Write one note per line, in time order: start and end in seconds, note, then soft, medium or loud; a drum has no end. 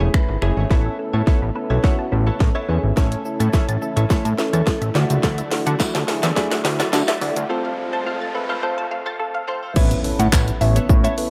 0.00 0.09 E1 loud
0.00 0.67 C#3 medium
0.00 0.67 A3 medium
0.00 0.12 A3 soft
0.00 0.67 E4 medium
0.00 0.13 E4 medium
0.00 0.67 G#4 medium
0.00 0.13 G#4 medium
0.00 0.13 C#5 medium
0.14 0.36 A3 medium
0.14 0.36 C#4 medium
0.14 0.37 E4 medium
0.14 0.37 B4 medium
0.14 finger snap loud
0.14 kick loud
0.29 0.38 G#1 medium
0.29 muted clean electric guitar stroke soft
0.42 0.52 F#1 medium
0.42 0.57 A3 medium
0.42 0.65 A3 medium
0.42 0.65 C#4 medium
0.42 0.56 E4 medium
0.42 0.65 E4 medium
0.42 0.65 G#4 loud
0.42 0.56 G#4 medium
0.42 0.56 C#5 medium
0.42 finger snap medium
0.57 0.66 G#1 medium
0.57 0.70 A3 medium
0.57 0.69 E4 medium
0.57 0.70 G#4 medium
0.57 0.70 C#5 medium
0.70 0.89 A1 loud
0.70 4.91 C#3 medium
0.70 2.95 A3 medium
0.70 0.97 B3 medium
0.70 0.93 B3 loud
0.70 2.95 B3 medium
0.70 0.93 C#4 loud
0.70 7.46 E4 medium
0.70 0.97 E4 medium
0.70 0.93 E4 loud
0.70 0.93 A4 loud
0.70 0.97 A4 medium
0.70 0.80 B4 medium
0.70 0.97 C#5 medium
0.70 kick loud
0.70 snare medium
0.70 riser medium
0.86 0.94 E5 medium
0.99 1.21 B3 medium
0.99 1.21 C#4 medium
0.99 1.21 E4 medium
0.99 1.22 A4 medium
0.99 muted clean electric guitar stroke soft
1.13 1.22 A2 medium
1.13 1.26 B3 medium
1.13 1.26 E4 medium
1.13 1.26 A4 medium
1.13 1.27 C#5 medium
1.13 1.22 A5 medium
1.27 1.48 B3 medium
1.27 1.50 B3 medium
1.27 1.50 C#4 medium
1.27 1.41 E4 medium
1.27 1.50 E4 medium
1.27 1.50 A4 medium
1.27 1.41 A4 medium
1.27 1.41 C#5 medium
1.27 1.37 E5 medium
1.27 kick loud
1.27 snare medium
1.42 1.51 A1 medium
1.42 1.51 B5 medium
1.42 muted clean electric guitar stroke soft
1.55 1.78 B3 medium
1.55 1.78 C#4 medium
1.55 1.78 E4 medium
1.55 1.78 A4 medium
1.55 1.65 B4 medium
1.55 muted clean electric guitar stroke soft
1.70 1.79 B1 medium
1.70 1.82 B3 soft
1.70 1.83 E4 medium
1.70 1.83 A4 medium
1.70 1.83 C#5 medium
1.70 1.79 E5 medium
1.83 2.05 B3 medium
1.83 2.06 B3 loud
1.83 2.06 C#4 loud
1.83 2.06 E4 loud
1.83 1.98 E4 medium
1.83 2.06 F#4 loud
1.83 1.98 A4 medium
1.83 1.93 C#5 medium
1.83 1.97 C#5 loud
1.83 kick loud
1.83 snare medium
1.99 2.07 A5 medium
1.99 muted clean electric guitar stroke medium
2.12 2.30 A1 loud
2.12 2.35 B3 medium
2.12 2.35 C#4 medium
2.12 2.35 E4 medium
2.12 2.35 A4 medium
2.12 2.21 E5 medium
2.12 muted clean electric guitar stroke soft
2.27 2.39 B3 soft
2.27 2.39 E4 medium
2.27 2.39 A4 medium
2.27 2.40 C#5 medium
2.27 2.35 B5 medium
2.40 2.50 A2 loud
2.40 2.63 B3 medium
2.40 2.63 C#4 medium
2.40 2.63 E4 medium
2.40 2.63 A4 medium
2.40 2.50 B4 medium
2.40 muted clean electric guitar stroke soft
2.40 kick loud
2.40 snare medium
2.55 2.67 B3 medium
2.55 2.67 E4 medium
2.55 2.68 A4 medium
2.55 2.68 C#5 medium
2.55 2.64 E5 medium
2.68 2.78 E2 medium
2.68 2.91 B3 medium
2.68 2.85 B3 medium
2.68 2.91 C#4 medium
2.68 2.91 E4 medium
2.68 2.83 E4 medium
2.68 2.91 G#4 medium
2.68 2.82 A4 medium
2.68 2.78 C#5 medium
2.68 2.82 C#5 medium
2.83 2.92 G#1 medium
2.83 muted clean electric guitar stroke medium
2.96 3.15 A1 loud
2.96 4.93 E3 medium
2.96 3.19 A3 loud
2.96 4.93 A3 medium
2.96 3.23 C#4 medium
2.96 3.19 C#4 loud
2.96 3.23 E4 medium
2.96 3.20 E4 loud
2.96 3.06 A4 medium
2.96 3.20 A4 loud
2.96 3.23 A4 medium
2.96 3.23 C#5 medium
2.96 kick loud
2.96 snare medium
2.96 shaker medium
3.12 3.20 E5 medium
3.12 closed hi-hat medium
3.12 shaker medium
3.25 3.48 A3 medium
3.25 3.48 C#4 medium
3.25 3.48 E4 medium
3.25 3.48 A4 medium
3.25 muted clean electric guitar stroke soft
3.25 shaker soft
3.40 3.49 A2 medium
3.40 3.52 C#4 medium
3.40 3.52 E4 medium
3.40 3.53 A4 medium
3.40 3.53 C#5 medium
3.40 3.49 A5 medium
3.40 closed hi-hat medium
3.40 shaker medium
3.53 3.76 A3 medium
3.53 3.74 C#4 medium
3.53 3.76 C#4 medium
3.53 3.68 E4 medium
3.53 3.76 E4 medium
3.53 3.76 A4 medium
3.53 3.67 A4 loud
3.53 3.67 C#5 medium
3.53 3.63 E5 medium
3.53 kick loud
3.53 snare medium
3.53 shaker medium
3.68 3.77 A1 medium
3.68 3.77 A6 medium
3.68 muted clean electric guitar stroke medium
3.68 closed hi-hat medium
3.68 shaker medium
3.81 4.04 A3 medium
3.81 4.04 C#4 medium
3.81 4.04 E4 medium
3.81 3.91 A4 medium
3.81 4.04 A4 loud
3.81 muted clean electric guitar stroke soft
3.81 shaker medium
3.96 4.05 A1 medium
3.96 4.08 C#4 medium
3.96 4.09 E4 medium
3.96 4.09 A4 medium
3.96 4.10 C#5 medium
3.96 4.05 E5 medium
3.96 closed hi-hat medium
3.96 shaker medium
4.10 4.16 A2 soft
4.10 4.33 A3 loud
4.10 4.31 C#4 medium
4.10 4.33 C#4 loud
4.10 4.24 E4 medium
4.10 4.33 E4 loud
4.10 4.33 A4 loud
4.10 4.24 A4 medium
4.10 4.20 C#5 medium
4.10 4.24 C#5 loud
4.10 kick loud
4.10 snare medium
4.10 shaker medium
4.25 4.34 A2 loud
4.25 4.34 A5 loud
4.25 muted clean electric guitar stroke medium
4.25 closed hi-hat medium
4.25 shaker medium
4.38 4.61 A3 medium
4.38 4.61 C#4 medium
4.38 4.61 E4 medium
4.38 4.61 A4 loud
4.38 4.48 E5 medium
4.38 muted clean electric guitar stroke soft
4.38 snare medium
4.38 shaker medium
4.53 4.62 E2 medium
4.53 4.65 C#4 soft
4.53 4.66 E4 soft
4.53 4.66 A4 medium
4.53 4.66 C#5 medium
4.53 4.62 A6 medium
4.53 closed hi-hat medium
4.53 shaker medium
4.66 4.89 A3 medium
4.66 4.89 C#4 medium
4.66 4.89 E4 medium
4.66 4.76 A4 medium
4.66 4.89 A4 loud
4.66 muted clean electric guitar stroke soft
4.66 kick loud
4.66 snare medium
4.66 shaker medium
4.81 4.90 A1 medium
4.81 4.90 E5 medium
4.81 muted clean electric guitar stroke medium
4.81 closed hi-hat medium
4.81 shaker soft
4.95 5.05 D2 loud
4.95 7.47 D3 medium
4.95 7.47 F#3 medium
4.95 5.10 A3 medium
4.95 5.41 A3 medium
4.95 9.72 A3 medium
4.95 5.41 D4 medium
4.95 5.41 E4 medium
4.95 5.09 E4 medium
4.95 5.41 F#4 loud
4.95 5.09 F#4 medium
4.95 5.04 D5 medium
4.95 5.08 D5 medium
4.95 snare medium
4.95 shaker medium
5.10 5.19 C#2 medium
5.10 5.22 A3 soft
5.10 5.22 E4 medium
5.10 5.23 F#4 medium
5.10 5.23 D5 medium
5.10 closed hi-hat medium
5.10 shaker medium
5.23 5.42 D2 loud
5.23 5.49 A3 medium
5.23 5.50 E4 loud
5.23 5.50 F#4 medium
5.23 5.33 A4 medium
5.23 5.50 D5 loud
5.23 kick loud
5.23 snare loud
5.23 shaker medium
5.38 5.47 E5 medium
5.38 closed hi-hat medium
5.38 shaker medium
5.51 5.74 A3 medium
5.51 5.74 D4 medium
5.51 5.74 E4 medium
5.51 5.74 F#4 loud
5.51 muted clean electric guitar stroke soft
5.51 snare medium
5.51 open hi-hat medium
5.51 shaker soft
5.66 5.75 D3 medium
5.66 5.78 A3 medium
5.66 5.79 E4 medium
5.66 5.79 F#4 medium
5.66 5.79 D5 medium
5.66 5.75 F#5 medium
5.66 closed hi-hat medium
5.66 shaker medium
5.80 6.01 A3 medium
5.80 6.02 A3 medium
5.80 6.02 D4 medium
5.80 6.03 E4 medium
5.80 5.94 E4 medium
5.80 6.03 F#4 medium
5.80 5.94 F#4 medium
5.80 5.93 D5 medium
5.80 5.89 E5 medium
5.80 kick loud
5.80 snare loud
5.80 tambourine loud
5.80 shaker medium
5.95 6.04 D2 medium
5.95 6.03 A5 medium
5.95 muted clean electric guitar stroke soft
5.95 snare loud
5.95 closed hi-hat medium
5.95 shaker medium
6.08 6.31 A3 medium
6.08 6.31 D4 medium
6.08 6.31 E4 medium
6.08 6.31 G#4 loud
6.08 6.18 A4 medium
6.08 muted clean electric guitar stroke soft
6.08 snare medium
6.08 open hi-hat medium
6.08 shaker medium
6.23 6.32 E2 medium
6.23 6.35 A3 medium
6.23 6.35 E4 medium
6.23 6.36 F#4 medium
6.23 6.36 D5 medium
6.23 6.32 E5 medium
6.23 snare loud
6.23 closed hi-hat medium
6.23 shaker medium
6.36 6.58 A3 medium
6.36 6.59 A3 loud
6.36 6.59 D4 loud
6.36 6.59 E4 loud
6.36 6.51 E4 loud
6.36 6.51 F#4 medium
6.36 6.59 G#4 loud
6.36 6.46 D5 medium
6.36 6.50 D5 medium
6.36 kick loud
6.36 snare loud
6.36 shaker medium
6.51 6.60 F#5 loud
6.51 muted clean electric guitar stroke soft
6.51 snare loud
6.51 closed hi-hat medium
6.51 shaker medium
6.65 6.83 D2 medium
6.65 6.87 A3 medium
6.65 6.87 D4 medium
6.65 6.87 E4 medium
6.65 6.88 F#4 medium
6.65 6.74 E5 medium
6.65 muted clean electric guitar stroke soft
6.65 snare loud
6.65 open hi-hat medium
6.65 shaker medium
6.79 6.92 A3 medium
6.79 6.92 E4 medium
6.79 6.92 F#4 medium
6.79 6.92 D5 medium
6.79 6.88 A5 medium
6.79 snare loud
6.79 closed hi-hat medium
6.79 shaker medium
6.93 7.03 D3 loud
6.93 7.16 A3 medium
6.93 7.16 D4 medium
6.93 7.16 E4 medium
6.93 7.16 F#4 loud
6.93 7.03 A4 medium
6.93 muted clean electric guitar stroke medium
6.93 snare loud
6.93 tambourine medium
6.93 shaker medium
7.08 7.20 A3 medium
7.08 7.20 E4 medium
7.08 7.21 F#4 medium
7.08 7.21 D5 medium
7.08 7.17 E5 medium
7.08 snare loud
7.08 closed hi-hat medium
7.08 shaker medium
7.21 7.31 D2 loud
7.21 7.44 A3 medium
7.21 7.38 A3 medium
7.21 7.44 D4 medium
7.21 7.44 E4 medium
7.21 7.36 E4 medium
7.21 7.44 F#4 loud
7.21 7.35 F#4 medium
7.21 7.31 D5 medium
7.21 7.35 D5 medium
7.21 open hi-hat medium
7.21 shaker medium
7.36 7.45 D2 loud
7.36 muted clean electric guitar stroke soft
7.36 closed hi-hat medium
7.36 shaker medium
7.49 9.74 C3 medium
7.49 9.74 F3 medium
7.49 7.72 A3 loud
7.49 7.76 C4 medium
7.49 7.72 C4 loud
7.49 9.74 F4 medium
7.49 7.72 F4 loud
7.49 7.76 F4 medium
7.49 7.59 A4 medium
7.49 7.72 A4 loud
7.49 7.76 A4 medium
7.49 7.76 C5 loud
7.65 7.73 F5 medium
7.78 8.00 A3 medium
7.78 8.01 C4 medium
7.78 8.01 F4 medium
7.78 8.01 A4 loud
7.78 muted clean electric guitar stroke soft
7.93 8.05 C4 medium
7.93 8.05 F4 medium
7.93 8.06 A4 medium
7.93 8.06 C5 medium
7.93 8.01 A5 loud
8.06 8.29 A3 medium
8.06 8.27 C4 medium
8.06 8.29 C4 medium
8.06 8.29 F4 medium
8.06 8.21 F4 medium
8.06 8.29 A4 loud
8.06 8.20 A4 medium
8.06 8.20 C5 loud
8.06 8.16 F5 medium
8.21 8.30 A6 medium
8.21 muted clean electric guitar stroke soft
8.34 8.57 A3 medium
8.34 8.57 C4 medium
8.34 8.57 F4 medium
8.34 8.44 A4 medium
8.34 8.57 B4 loud
8.34 muted clean electric guitar stroke soft
8.49 8.61 C4 medium
8.49 8.62 F4 medium
8.49 8.62 A4 medium
8.49 8.62 C5 medium
8.49 8.58 F5 medium
8.63 8.85 A3 loud
8.63 8.84 C4 medium
8.63 8.85 C4 loud
8.63 8.86 F4 loud
8.63 8.77 F4 loud
8.63 8.86 A4 loud
8.63 8.77 A4 loud
8.63 8.72 C5 medium
8.63 8.77 C5 loud
8.78 8.86 A5 loud
8.78 muted clean electric guitar stroke medium
8.91 9.14 A3 medium
8.91 9.14 C4 medium
8.91 9.14 F4 medium
8.91 9.14 A4 loud
8.91 9.01 F5 medium
8.91 muted clean electric guitar stroke medium
9.06 9.18 C4 medium
9.06 9.18 F4 medium
9.06 9.19 A4 medium
9.06 9.19 C5 medium
9.06 9.15 A6 medium
9.19 9.42 A3 medium
9.19 9.42 C4 medium
9.19 9.42 F4 medium
9.19 9.29 A4 medium
9.19 9.42 A4 loud
9.19 muted clean electric guitar stroke soft
9.34 9.43 F5 medium
9.34 muted clean electric guitar stroke medium
9.48 9.70 A3 medium
9.48 9.62 C4 medium
9.48 9.70 C4 medium
9.48 9.62 F4 medium
9.48 9.71 F4 medium
9.48 9.71 A4 loud
9.48 9.62 A4 medium
9.48 9.57 C5 medium
9.48 9.61 C5 medium
9.63 9.75 C4 medium
9.63 9.76 F4 medium
9.63 9.75 A4 medium
9.63 9.77 C5 medium
9.76 9.95 A1 loud
9.76 11.30 C#3 medium
9.76 11.30 A3 medium
9.76 9.97 B3 medium
9.76 9.99 B3 loud
9.76 11.30 B3 medium
9.76 9.99 C#4 medium
9.76 11.30 E4 loud
9.76 9.99 E4 medium
9.76 9.91 E4 medium
9.76 9.99 A4 medium
9.76 9.90 A4 medium
9.76 9.99 B4 loud
9.76 9.90 C#5 loud
9.76 9.88 E5 loud
9.76 kick loud
9.76 crash loud
9.76 impact medium
9.76 shaker medium
9.91 muted clean electric guitar stroke medium
9.91 closed hi-hat medium
9.91 shaker medium
10.04 10.27 B3 medium
10.04 10.27 C#4 medium
10.04 10.27 E4 medium
10.04 10.27 A4 medium
10.04 10.27 B4 medium
10.04 muted clean electric guitar stroke soft
10.04 open hi-hat medium
10.04 shaker medium
10.19 10.28 A2 medium
10.19 10.31 B3 medium
10.19 10.32 E4 medium
10.19 10.32 A4 medium
10.19 10.32 C#5 medium
10.19 10.30 F#5 medium
10.19 closed hi-hat medium
10.19 shaker medium
10.32 10.51 A1 medium
10.32 10.55 B3 medium
10.32 10.54 B3 medium
10.32 10.55 C#4 medium
10.32 10.55 E4 medium
10.32 10.47 E4 loud
10.32 10.55 A4 medium
10.32 10.47 A4 loud
10.32 10.55 B4 medium
10.32 10.46 C#5 loud
10.32 kick loud
10.32 clap loud
10.32 tambourine loud
10.32 shaker medium
10.48 muted clean electric guitar stroke soft
10.48 closed hi-hat medium
10.48 shaker medium
10.61 10.79 A1 medium
10.61 10.84 B3 medium
10.61 10.84 C#4 medium
10.61 10.84 E4 medium
10.61 10.84 A4 medium
10.61 10.84 C#5 medium
10.61 10.83 E5 medium
10.61 muted clean electric guitar stroke soft
10.61 open hi-hat medium
10.61 shaker medium
10.76 10.88 B3 medium
10.76 10.88 E4 medium
10.76 10.88 A4 medium
10.76 10.89 C#5 medium
10.76 closed hi-hat medium
10.76 shaker medium
10.89 11.08 A2 loud
10.89 11.12 B3 loud
10.89 11.12 C#4 medium
10.89 11.12 E4 loud
10.89 11.12 A4 medium
10.89 11.12 C#5 loud
10.89 muted clean electric guitar stroke soft
10.89 kick loud
10.89 shaker medium
11.04 11.16 B3 medium
11.04 11.17 E4 medium
11.04 11.17 A4 medium
11.04 11.17 C#5 loud
11.04 11.15 E5 medium
11.04 closed hi-hat medium
11.04 shaker medium
11.17 11.30 B3 medium
11.17 11.30 C#4 medium
11.17 11.30 E4 medium
11.17 11.30 A4 medium
11.17 11.30 B4 medium
11.17 muted clean electric guitar stroke soft
11.17 open hi-hat medium
11.17 shaker medium